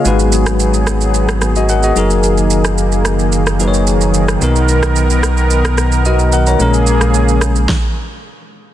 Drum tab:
SH |xxxxxxxxxxxxxxxx|xxxxxxxxxxxxxxxx|xxxxxxxxxxxxxxxx|xxxxxxxx--------|
SD |---r--r--rr-----|---r--r--r-----r|---r--r--rr-----|---r--r-o-------|
BD |----------------|----------------|----------------|--------o-------|